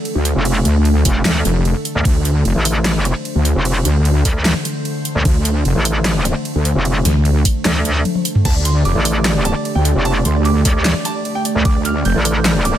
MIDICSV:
0, 0, Header, 1, 6, 480
1, 0, Start_track
1, 0, Key_signature, -1, "minor"
1, 0, Tempo, 400000
1, 542, Time_signature, 4, 2, 24, 8
1, 15337, End_track
2, 0, Start_track
2, 0, Title_t, "Grand piano"
2, 0, Program_c, 0, 0
2, 10142, Note_on_c, 0, 81, 103
2, 10210, Note_off_c, 0, 81, 0
2, 10263, Note_on_c, 0, 74, 65
2, 10330, Note_off_c, 0, 74, 0
2, 10382, Note_on_c, 0, 84, 89
2, 10450, Note_off_c, 0, 84, 0
2, 10503, Note_on_c, 0, 74, 67
2, 10570, Note_off_c, 0, 74, 0
2, 10622, Note_on_c, 0, 86, 99
2, 10690, Note_off_c, 0, 86, 0
2, 10743, Note_on_c, 0, 74, 67
2, 10810, Note_off_c, 0, 74, 0
2, 10862, Note_on_c, 0, 74, 63
2, 10930, Note_off_c, 0, 74, 0
2, 11102, Note_on_c, 0, 74, 67
2, 11170, Note_off_c, 0, 74, 0
2, 11223, Note_on_c, 0, 74, 64
2, 11290, Note_off_c, 0, 74, 0
2, 11342, Note_on_c, 0, 81, 93
2, 11410, Note_off_c, 0, 81, 0
2, 11463, Note_on_c, 0, 74, 68
2, 11530, Note_off_c, 0, 74, 0
2, 11582, Note_on_c, 0, 74, 64
2, 11650, Note_off_c, 0, 74, 0
2, 11704, Note_on_c, 0, 79, 100
2, 11770, Note_off_c, 0, 79, 0
2, 11822, Note_on_c, 0, 74, 68
2, 11890, Note_off_c, 0, 74, 0
2, 11944, Note_on_c, 0, 74, 66
2, 12010, Note_off_c, 0, 74, 0
2, 12062, Note_on_c, 0, 81, 98
2, 12130, Note_off_c, 0, 81, 0
2, 12184, Note_on_c, 0, 74, 65
2, 12250, Note_off_c, 0, 74, 0
2, 12302, Note_on_c, 0, 84, 84
2, 12370, Note_off_c, 0, 84, 0
2, 12424, Note_on_c, 0, 74, 67
2, 12490, Note_off_c, 0, 74, 0
2, 12542, Note_on_c, 0, 86, 100
2, 12610, Note_off_c, 0, 86, 0
2, 12664, Note_on_c, 0, 74, 73
2, 12730, Note_off_c, 0, 74, 0
2, 12782, Note_on_c, 0, 74, 65
2, 12850, Note_off_c, 0, 74, 0
2, 13023, Note_on_c, 0, 74, 67
2, 13091, Note_off_c, 0, 74, 0
2, 13143, Note_on_c, 0, 74, 65
2, 13210, Note_off_c, 0, 74, 0
2, 13262, Note_on_c, 0, 81, 94
2, 13330, Note_off_c, 0, 81, 0
2, 13383, Note_on_c, 0, 74, 67
2, 13450, Note_off_c, 0, 74, 0
2, 13502, Note_on_c, 0, 74, 63
2, 13570, Note_off_c, 0, 74, 0
2, 13623, Note_on_c, 0, 79, 102
2, 13690, Note_off_c, 0, 79, 0
2, 13742, Note_on_c, 0, 74, 69
2, 13810, Note_off_c, 0, 74, 0
2, 13863, Note_on_c, 0, 74, 68
2, 13930, Note_off_c, 0, 74, 0
2, 13981, Note_on_c, 0, 86, 96
2, 14050, Note_off_c, 0, 86, 0
2, 14103, Note_on_c, 0, 74, 68
2, 14170, Note_off_c, 0, 74, 0
2, 14222, Note_on_c, 0, 89, 91
2, 14290, Note_off_c, 0, 89, 0
2, 14343, Note_on_c, 0, 74, 68
2, 14410, Note_off_c, 0, 74, 0
2, 14461, Note_on_c, 0, 91, 95
2, 14530, Note_off_c, 0, 91, 0
2, 14583, Note_on_c, 0, 74, 66
2, 14650, Note_off_c, 0, 74, 0
2, 14701, Note_on_c, 0, 74, 63
2, 14770, Note_off_c, 0, 74, 0
2, 14942, Note_on_c, 0, 74, 66
2, 15010, Note_off_c, 0, 74, 0
2, 15063, Note_on_c, 0, 74, 68
2, 15130, Note_off_c, 0, 74, 0
2, 15182, Note_on_c, 0, 86, 96
2, 15250, Note_off_c, 0, 86, 0
2, 15337, End_track
3, 0, Start_track
3, 0, Title_t, "Ambient pad"
3, 0, Program_c, 1, 92
3, 0, Note_on_c, 1, 50, 81
3, 0, Note_on_c, 1, 57, 72
3, 0, Note_on_c, 1, 69, 88
3, 2438, Note_off_c, 1, 69, 0
3, 2463, Note_on_c, 1, 72, 90
3, 10119, Note_off_c, 1, 72, 0
3, 10142, Note_on_c, 1, 67, 90
3, 13968, Note_off_c, 1, 67, 0
3, 13982, Note_on_c, 1, 72, 90
3, 15337, Note_off_c, 1, 50, 0
3, 15337, Note_off_c, 1, 57, 0
3, 15337, Note_off_c, 1, 72, 0
3, 15337, End_track
4, 0, Start_track
4, 0, Title_t, "Wobble bass"
4, 0, Program_c, 2, 39
4, 183, Note_on_c, 2, 38, 95
4, 404, Note_off_c, 2, 38, 0
4, 782, Note_on_c, 2, 38, 102
4, 1243, Note_off_c, 2, 38, 0
4, 1742, Note_on_c, 2, 29, 99
4, 2084, Note_off_c, 2, 29, 0
4, 2462, Note_on_c, 2, 38, 98
4, 2923, Note_off_c, 2, 38, 0
4, 2942, Note_on_c, 2, 29, 91
4, 3044, Note_off_c, 2, 29, 0
4, 4023, Note_on_c, 2, 38, 94
4, 4244, Note_off_c, 2, 38, 0
4, 4622, Note_on_c, 2, 38, 100
4, 5083, Note_off_c, 2, 38, 0
4, 6302, Note_on_c, 2, 38, 90
4, 6763, Note_off_c, 2, 38, 0
4, 6782, Note_on_c, 2, 29, 95
4, 6884, Note_off_c, 2, 29, 0
4, 7863, Note_on_c, 2, 38, 97
4, 8084, Note_off_c, 2, 38, 0
4, 8462, Note_on_c, 2, 38, 98
4, 8923, Note_off_c, 2, 38, 0
4, 10142, Note_on_c, 2, 38, 97
4, 10603, Note_off_c, 2, 38, 0
4, 10622, Note_on_c, 2, 29, 94
4, 10724, Note_off_c, 2, 29, 0
4, 11703, Note_on_c, 2, 38, 94
4, 11924, Note_off_c, 2, 38, 0
4, 12302, Note_on_c, 2, 38, 95
4, 12763, Note_off_c, 2, 38, 0
4, 13982, Note_on_c, 2, 38, 95
4, 14443, Note_off_c, 2, 38, 0
4, 14462, Note_on_c, 2, 29, 100
4, 14564, Note_off_c, 2, 29, 0
4, 15337, End_track
5, 0, Start_track
5, 0, Title_t, "Wobble bass"
5, 0, Program_c, 3, 39
5, 423, Note_on_c, 3, 29, 96
5, 763, Note_off_c, 3, 29, 0
5, 1262, Note_on_c, 3, 29, 101
5, 1483, Note_off_c, 3, 29, 0
5, 1502, Note_on_c, 3, 38, 98
5, 1723, Note_off_c, 3, 38, 0
5, 2343, Note_on_c, 3, 38, 94
5, 2443, Note_off_c, 3, 38, 0
5, 3064, Note_on_c, 3, 33, 99
5, 3764, Note_off_c, 3, 33, 0
5, 4264, Note_on_c, 3, 29, 95
5, 4603, Note_off_c, 3, 29, 0
5, 5102, Note_on_c, 3, 38, 97
5, 5444, Note_off_c, 3, 38, 0
5, 6183, Note_on_c, 3, 38, 91
5, 6283, Note_off_c, 3, 38, 0
5, 6903, Note_on_c, 3, 33, 94
5, 7604, Note_off_c, 3, 33, 0
5, 8103, Note_on_c, 3, 29, 95
5, 8443, Note_off_c, 3, 29, 0
5, 9182, Note_on_c, 3, 38, 95
5, 9643, Note_off_c, 3, 38, 0
5, 10743, Note_on_c, 3, 33, 95
5, 11444, Note_off_c, 3, 33, 0
5, 11944, Note_on_c, 3, 29, 91
5, 12283, Note_off_c, 3, 29, 0
5, 12782, Note_on_c, 3, 38, 94
5, 13124, Note_off_c, 3, 38, 0
5, 13864, Note_on_c, 3, 38, 96
5, 13963, Note_off_c, 3, 38, 0
5, 14584, Note_on_c, 3, 33, 96
5, 15284, Note_off_c, 3, 33, 0
5, 15337, End_track
6, 0, Start_track
6, 0, Title_t, "Drums"
6, 62, Note_on_c, 9, 51, 46
6, 182, Note_off_c, 9, 51, 0
6, 302, Note_on_c, 9, 42, 82
6, 422, Note_off_c, 9, 42, 0
6, 542, Note_on_c, 9, 51, 65
6, 662, Note_off_c, 9, 51, 0
6, 782, Note_on_c, 9, 42, 76
6, 902, Note_off_c, 9, 42, 0
6, 1022, Note_on_c, 9, 51, 49
6, 1142, Note_off_c, 9, 51, 0
6, 1262, Note_on_c, 9, 36, 65
6, 1262, Note_on_c, 9, 46, 92
6, 1382, Note_off_c, 9, 36, 0
6, 1382, Note_off_c, 9, 46, 0
6, 1502, Note_on_c, 9, 38, 127
6, 1502, Note_on_c, 9, 39, 88
6, 1502, Note_on_c, 9, 51, 71
6, 1622, Note_off_c, 9, 38, 0
6, 1622, Note_off_c, 9, 39, 0
6, 1622, Note_off_c, 9, 51, 0
6, 1742, Note_on_c, 9, 42, 75
6, 1862, Note_off_c, 9, 42, 0
6, 1982, Note_on_c, 9, 51, 46
6, 2102, Note_off_c, 9, 51, 0
6, 2222, Note_on_c, 9, 42, 74
6, 2342, Note_off_c, 9, 42, 0
6, 2462, Note_on_c, 9, 36, 122
6, 2462, Note_on_c, 9, 51, 67
6, 2582, Note_off_c, 9, 36, 0
6, 2582, Note_off_c, 9, 51, 0
6, 2702, Note_on_c, 9, 42, 77
6, 2822, Note_off_c, 9, 42, 0
6, 2942, Note_on_c, 9, 51, 51
6, 3062, Note_off_c, 9, 51, 0
6, 3182, Note_on_c, 9, 46, 100
6, 3302, Note_off_c, 9, 46, 0
6, 3423, Note_on_c, 9, 38, 121
6, 3423, Note_on_c, 9, 39, 85
6, 3423, Note_on_c, 9, 51, 70
6, 3543, Note_off_c, 9, 38, 0
6, 3543, Note_off_c, 9, 39, 0
6, 3543, Note_off_c, 9, 51, 0
6, 3662, Note_on_c, 9, 42, 74
6, 3782, Note_off_c, 9, 42, 0
6, 3902, Note_on_c, 9, 51, 47
6, 4022, Note_off_c, 9, 51, 0
6, 4142, Note_on_c, 9, 42, 78
6, 4262, Note_off_c, 9, 42, 0
6, 4382, Note_on_c, 9, 51, 66
6, 4502, Note_off_c, 9, 51, 0
6, 4622, Note_on_c, 9, 42, 85
6, 4742, Note_off_c, 9, 42, 0
6, 4862, Note_on_c, 9, 51, 51
6, 4982, Note_off_c, 9, 51, 0
6, 5102, Note_on_c, 9, 36, 62
6, 5102, Note_on_c, 9, 46, 102
6, 5222, Note_off_c, 9, 36, 0
6, 5222, Note_off_c, 9, 46, 0
6, 5342, Note_on_c, 9, 38, 124
6, 5342, Note_on_c, 9, 39, 85
6, 5342, Note_on_c, 9, 51, 66
6, 5462, Note_off_c, 9, 38, 0
6, 5462, Note_off_c, 9, 39, 0
6, 5462, Note_off_c, 9, 51, 0
6, 5582, Note_on_c, 9, 42, 79
6, 5702, Note_off_c, 9, 42, 0
6, 5822, Note_on_c, 9, 51, 48
6, 5942, Note_off_c, 9, 51, 0
6, 6062, Note_on_c, 9, 42, 75
6, 6182, Note_off_c, 9, 42, 0
6, 6302, Note_on_c, 9, 36, 117
6, 6302, Note_on_c, 9, 51, 66
6, 6422, Note_off_c, 9, 36, 0
6, 6422, Note_off_c, 9, 51, 0
6, 6542, Note_on_c, 9, 42, 85
6, 6662, Note_off_c, 9, 42, 0
6, 6782, Note_on_c, 9, 51, 51
6, 6902, Note_off_c, 9, 51, 0
6, 7022, Note_on_c, 9, 46, 100
6, 7142, Note_off_c, 9, 46, 0
6, 7262, Note_on_c, 9, 38, 111
6, 7262, Note_on_c, 9, 39, 91
6, 7262, Note_on_c, 9, 51, 69
6, 7382, Note_off_c, 9, 38, 0
6, 7382, Note_off_c, 9, 39, 0
6, 7382, Note_off_c, 9, 51, 0
6, 7502, Note_on_c, 9, 42, 78
6, 7622, Note_off_c, 9, 42, 0
6, 7742, Note_on_c, 9, 51, 48
6, 7862, Note_off_c, 9, 51, 0
6, 7982, Note_on_c, 9, 42, 83
6, 8102, Note_off_c, 9, 42, 0
6, 8222, Note_on_c, 9, 51, 63
6, 8342, Note_off_c, 9, 51, 0
6, 8462, Note_on_c, 9, 38, 58
6, 8462, Note_on_c, 9, 42, 85
6, 8582, Note_off_c, 9, 38, 0
6, 8582, Note_off_c, 9, 42, 0
6, 8702, Note_on_c, 9, 51, 49
6, 8822, Note_off_c, 9, 51, 0
6, 8942, Note_on_c, 9, 36, 62
6, 8942, Note_on_c, 9, 46, 101
6, 9062, Note_off_c, 9, 36, 0
6, 9062, Note_off_c, 9, 46, 0
6, 9182, Note_on_c, 9, 38, 115
6, 9182, Note_on_c, 9, 39, 95
6, 9182, Note_on_c, 9, 51, 68
6, 9302, Note_off_c, 9, 38, 0
6, 9302, Note_off_c, 9, 39, 0
6, 9302, Note_off_c, 9, 51, 0
6, 9422, Note_on_c, 9, 42, 83
6, 9542, Note_off_c, 9, 42, 0
6, 9662, Note_on_c, 9, 48, 60
6, 9662, Note_on_c, 9, 51, 45
6, 9782, Note_off_c, 9, 48, 0
6, 9782, Note_off_c, 9, 51, 0
6, 9783, Note_on_c, 9, 48, 62
6, 9902, Note_on_c, 9, 42, 85
6, 9903, Note_off_c, 9, 48, 0
6, 10022, Note_off_c, 9, 42, 0
6, 10023, Note_on_c, 9, 45, 83
6, 10142, Note_on_c, 9, 36, 124
6, 10142, Note_on_c, 9, 49, 72
6, 10142, Note_on_c, 9, 51, 60
6, 10143, Note_off_c, 9, 45, 0
6, 10262, Note_off_c, 9, 36, 0
6, 10262, Note_off_c, 9, 49, 0
6, 10262, Note_off_c, 9, 51, 0
6, 10382, Note_on_c, 9, 42, 81
6, 10502, Note_off_c, 9, 42, 0
6, 10622, Note_on_c, 9, 51, 46
6, 10742, Note_off_c, 9, 51, 0
6, 10862, Note_on_c, 9, 46, 94
6, 10982, Note_off_c, 9, 46, 0
6, 11102, Note_on_c, 9, 38, 120
6, 11102, Note_on_c, 9, 39, 96
6, 11102, Note_on_c, 9, 51, 64
6, 11222, Note_off_c, 9, 38, 0
6, 11222, Note_off_c, 9, 39, 0
6, 11222, Note_off_c, 9, 51, 0
6, 11342, Note_on_c, 9, 42, 83
6, 11462, Note_off_c, 9, 42, 0
6, 11582, Note_on_c, 9, 51, 47
6, 11702, Note_off_c, 9, 51, 0
6, 11822, Note_on_c, 9, 42, 84
6, 11942, Note_off_c, 9, 42, 0
6, 12062, Note_on_c, 9, 51, 62
6, 12182, Note_off_c, 9, 51, 0
6, 12302, Note_on_c, 9, 42, 84
6, 12422, Note_off_c, 9, 42, 0
6, 12542, Note_on_c, 9, 51, 48
6, 12662, Note_off_c, 9, 51, 0
6, 12782, Note_on_c, 9, 36, 66
6, 12782, Note_on_c, 9, 46, 90
6, 12902, Note_off_c, 9, 36, 0
6, 12902, Note_off_c, 9, 46, 0
6, 13022, Note_on_c, 9, 38, 123
6, 13022, Note_on_c, 9, 39, 96
6, 13022, Note_on_c, 9, 51, 64
6, 13142, Note_off_c, 9, 38, 0
6, 13142, Note_off_c, 9, 39, 0
6, 13142, Note_off_c, 9, 51, 0
6, 13262, Note_on_c, 9, 42, 77
6, 13382, Note_off_c, 9, 42, 0
6, 13502, Note_on_c, 9, 51, 44
6, 13622, Note_off_c, 9, 51, 0
6, 13742, Note_on_c, 9, 42, 81
6, 13862, Note_off_c, 9, 42, 0
6, 13982, Note_on_c, 9, 36, 127
6, 13982, Note_on_c, 9, 51, 63
6, 14102, Note_off_c, 9, 36, 0
6, 14102, Note_off_c, 9, 51, 0
6, 14222, Note_on_c, 9, 42, 78
6, 14342, Note_off_c, 9, 42, 0
6, 14462, Note_on_c, 9, 51, 49
6, 14582, Note_off_c, 9, 51, 0
6, 14702, Note_on_c, 9, 46, 90
6, 14822, Note_off_c, 9, 46, 0
6, 14942, Note_on_c, 9, 38, 127
6, 14942, Note_on_c, 9, 39, 96
6, 14942, Note_on_c, 9, 51, 65
6, 15062, Note_off_c, 9, 38, 0
6, 15062, Note_off_c, 9, 39, 0
6, 15062, Note_off_c, 9, 51, 0
6, 15182, Note_on_c, 9, 42, 73
6, 15302, Note_off_c, 9, 42, 0
6, 15337, End_track
0, 0, End_of_file